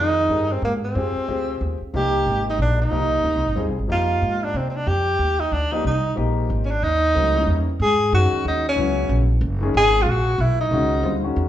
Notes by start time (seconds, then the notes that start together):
Already playing: F2 D#3 G#3 D5
0.00 D#4 F4
0.29 G2 D4 G4 G#4 A#4
0.52 C4
0.62 G#2 A#3
0.85 C4
0.95 F2 C4 F4 G4 G#4
1.16 muted upright bass stroke
1.28 D2 C4 F4 G4 G#4
1.61 D#2
1.81 muted upright bass stroke
1.94 C2 F3 A#3 D#4 G4
2.26 G#1
2.50 D#4
2.58 A#1 D4
2.82 D#4
2.91 C2 F3 A#3 D#4 G4
3.24 D2
3.35 C2
3.47 G#1
3.55 D#2 G3 C4 F4 G#4
3.68 C2
3.79 G#1
3.87 F2 F3 A#3 D#4 G4
3.92 F4
4.22 G#2
4.44 D4
4.54 C3 C4
4.70 C4
4.76 D4
4.87 F2 G4
5.19 D#2
5.40 D#4
5.52 D2 D4
5.72 F3 A#3 D#4 G4
5.84 C2 D#4
6.16 A#1 F3 A#3 D#4 G4
6.50 G#1
6.65 C#4
6.71 D4
6.82 D#2 D#4
7.14 C#2 F#3 A3 C4 D#4
7.34 G3 A#3 C#4 E4
7.47 E2
7.79 G#2 G#4
8.12 F#2 D#3 G#3 C#4 F#4
8.32 muted upright bass stroke
8.45 D#2 D#4
8.69 C#4
8.76 C#2 C#3 F#3 B3 E4
9.09 A#1
9.41 F#1
9.61 D#3 G#3 C#4 G#4
9.74 G#1 G#4
10.02 A#1 F4
10.10 F#4
10.38 B1 E4
10.61 D#4
10.71 C#2 D#3 G#3 C#4 F#4
11.02 D#2 D3 G3 C4 F4
11.23 D#3 G#3 C#4 F#4
11.36 E2